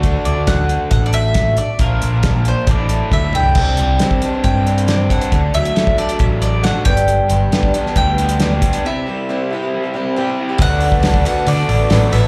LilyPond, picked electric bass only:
\new Staff \with { instrumentName = "Picked electric bass" } { \clef bass \time 4/4 \key d \mixolydian \tempo 4 = 137 d,8 d,4. a,,2 | bes,,8 bes,,4. a,,4 d,8 c,8 | c,8 c,8 r4 g,2 | d,8 d,8 r4 a,,4. g,,8~ |
g,,8 g,,8 r4 d,2 | r1 | d,2 d8 a,,8 a,,8 a,,8 | }